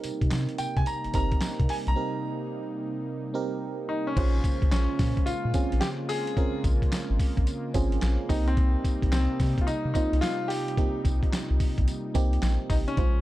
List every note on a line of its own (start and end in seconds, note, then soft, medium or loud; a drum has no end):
0.00 4.13 C3 medium
0.00 4.13 G3 medium
0.00 4.13 A#3 medium
0.00 0.38 C4 medium
0.00 0.38 D#4 loud
0.00 4.13 D#4 loud
0.00 0.39 G4 medium
0.00 0.39 A#4 loud
0.00 closed hi-hat medium
0.00 tambourine medium
0.05 0.12 C3 soft
0.21 0.30 C3 loud
0.21 kick medium
0.21 closed hi-hat medium
0.31 0.47 C3 loud
0.31 snare loud
0.31 clap loud
0.31 closed hi-hat medium
0.31 tambourine loud
0.49 closed hi-hat soft
0.58 0.67 C3 medium
0.58 0.77 G5 loud
0.58 closed hi-hat medium
0.58 tambourine medium
0.77 0.85 C3 loud
0.77 0.87 G#5 medium
0.77 kick medium
0.77 closed hi-hat medium
0.86 1.13 A#5 loud
0.86 closed hi-hat medium
0.86 tambourine medium
1.04 1.08 G1 medium
1.04 closed hi-hat soft
1.13 1.37 G1 loud
1.13 1.79 C4 medium
1.13 1.80 D#4 medium
1.13 1.80 G4 medium
1.13 1.80 A#4 medium
1.13 1.71 A#5 loud
1.13 kick medium
1.13 closed hi-hat loud
1.13 tambourine medium
1.32 kick medium
1.32 closed hi-hat soft
1.41 snare loud
1.41 clap medium
1.41 closed hi-hat medium
1.41 tambourine loud
1.60 1.68 C3 loud
1.60 kick medium
1.60 closed hi-hat medium
1.69 1.75 G#5 medium
1.69 open hi-hat medium
1.87 1.95 B1 medium
1.87 2.66 A#5 loud
1.87 closed hi-hat medium
1.96 2.81 C4 medium
1.96 2.81 D#4 medium
1.96 2.81 G4 medium
1.96 2.82 A#4 medium
3.34 4.00 C4 medium
3.34 4.00 D#4 medium
3.34 4.00 G4 medium
3.34 4.00 A#4 loud
3.89 4.06 D#4 medium
4.07 4.70 C#4 medium
4.16 4.40 A#1 loud
4.16 8.26 C#3 medium
4.16 8.26 G#3 medium
4.16 13.21 A#3 medium
4.16 5.01 C#4 medium
4.16 5.02 F4 medium
4.16 8.26 F4 loud
4.16 5.02 G#4 medium
4.16 5.01 C5 medium
4.16 kick loud
4.16 closed hi-hat medium
4.16 crash loud
4.44 kick medium
4.44 closed hi-hat medium
4.44 tambourine medium
4.62 4.70 C#2 loud
4.62 kick loud
4.62 closed hi-hat medium
4.71 4.87 A#1 medium
4.71 5.28 C#4 medium
4.71 snare loud
4.71 clap medium
4.71 closed hi-hat medium
4.71 tambourine loud
4.99 5.15 A#2 loud
4.99 kick medium
4.99 snare medium
4.99 open hi-hat medium
4.99 tambourine medium
5.17 kick loud
5.17 closed hi-hat medium
5.26 5.34 A#2 soft
5.26 5.83 F4 medium
5.26 closed hi-hat medium
5.26 tambourine medium
5.45 5.53 A#2 medium
5.54 6.20 C4 medium
5.54 6.20 C#4 medium
5.54 6.20 F4 medium
5.54 6.20 G#4 medium
5.54 kick loud
5.54 closed hi-hat medium
5.54 tambourine medium
5.72 5.81 A#1 medium
5.72 closed hi-hat medium
5.81 5.87 G4 loud
5.81 snare loud
5.81 clap medium
5.81 closed hi-hat medium
5.81 tambourine loud
6.09 6.60 G#4 loud
6.09 open hi-hat medium
6.09 tambourine medium
6.27 closed hi-hat medium
6.37 7.22 C4 medium
6.37 7.22 C#4 medium
6.37 7.22 F4 medium
6.37 7.22 A#4 medium
6.37 kick loud
6.37 closed hi-hat medium
6.64 6.79 A#1 medium
6.64 kick medium
6.64 closed hi-hat medium
6.64 tambourine medium
6.82 kick medium
6.82 closed hi-hat medium
6.92 snare loud
6.92 clap medium
6.92 closed hi-hat medium
6.92 tambourine loud
7.10 7.18 G#1 medium
7.20 kick medium
7.20 open hi-hat medium
7.20 tambourine medium
7.37 7.45 A#1 loud
7.37 kick medium
7.37 closed hi-hat medium
7.47 closed hi-hat medium
7.47 tambourine medium
7.74 7.98 G#1 loud
7.74 8.28 C4 medium
7.74 8.29 C#4 medium
7.74 8.30 F4 medium
7.74 8.30 G#4 loud
7.74 kick medium
7.74 closed hi-hat medium
7.74 tambourine medium
7.92 closed hi-hat soft
8.02 8.17 A#1 medium
8.02 snare loud
8.02 clap medium
8.02 closed hi-hat medium
8.02 tambourine loud
8.29 8.76 C2 loud
8.29 12.93 C3 medium
8.29 12.93 G3 medium
8.29 9.19 A#3 medium
8.29 9.19 C4 medium
8.29 8.48 D#4 medium
8.29 12.93 D#4 medium
8.29 9.19 D#4 medium
8.29 9.19 G4 medium
8.29 kick medium
8.29 open hi-hat medium
8.29 tambourine medium
8.48 9.10 C4 loud
8.48 closed hi-hat medium
8.57 kick loud
8.57 closed hi-hat medium
8.84 kick medium
8.84 closed hi-hat medium
8.84 tambourine medium
9.02 9.11 A#1 medium
9.02 kick medium
9.02 closed hi-hat medium
9.12 9.28 C2 medium
9.12 9.64 C4 medium
9.12 snare loud
9.12 clap medium
9.12 closed hi-hat medium
9.12 tambourine loud
9.40 9.55 C3 loud
9.40 kick medium
9.40 snare medium
9.40 open hi-hat medium
9.40 tambourine medium
9.58 9.67 F4 medium
9.58 kick medium
9.58 closed hi-hat medium
9.67 9.74 C3 medium
9.67 9.92 D#4 loud
9.67 closed hi-hat medium
9.67 tambourine medium
9.85 9.93 C3 loud
9.94 10.60 A#3 medium
9.94 10.61 C4 medium
9.94 10.20 D#4 medium
9.94 10.61 D#4 medium
9.94 10.61 F4 medium
9.94 kick loud
9.94 closed hi-hat medium
9.94 tambourine medium
10.13 10.21 C2 loud
10.13 closed hi-hat medium
10.21 10.50 F4 loud
10.21 snare loud
10.21 clap medium
10.21 closed hi-hat medium
10.21 tambourine loud
10.48 11.00 G4 loud
10.48 open hi-hat medium
10.48 tambourine medium
10.68 closed hi-hat medium
10.77 11.62 A#3 medium
10.77 11.62 C4 medium
10.77 11.62 D#4 medium
10.77 11.62 G4 medium
10.77 kick loud
10.77 closed hi-hat medium
11.05 11.20 C2 loud
11.05 kick loud
11.05 closed hi-hat medium
11.05 tambourine medium
11.23 kick medium
11.23 closed hi-hat medium
11.33 snare loud
11.33 clap medium
11.33 closed hi-hat medium
11.33 tambourine loud
11.50 11.58 C2 loud
11.60 kick loud
11.60 open hi-hat medium
11.60 tambourine medium
11.78 11.86 A#1 loud
11.78 kick medium
11.78 closed hi-hat medium
11.88 closed hi-hat medium
11.88 tambourine medium
12.14 12.38 C2 medium
12.14 12.80 A#3 medium
12.14 12.80 C4 medium
12.14 12.81 D#4 medium
12.14 12.81 G4 loud
12.14 kick loud
12.14 closed hi-hat medium
12.14 tambourine medium
12.33 closed hi-hat medium
12.42 12.58 A#1 loud
12.42 snare loud
12.42 clap medium
12.42 closed hi-hat medium
12.42 tambourine loud
12.70 12.85 A1 medium
12.70 12.75 D#4 medium
12.70 kick loud
12.70 open hi-hat medium
12.70 tambourine medium
12.88 13.21 C#4 loud
12.88 closed hi-hat medium
12.97 13.21 A#1 loud
12.97 13.21 C#3 medium
12.97 13.21 G#3 medium
12.97 13.21 C#4 medium
12.97 13.21 F4 medium
12.97 13.21 C5 medium
12.97 kick loud
12.97 closed hi-hat medium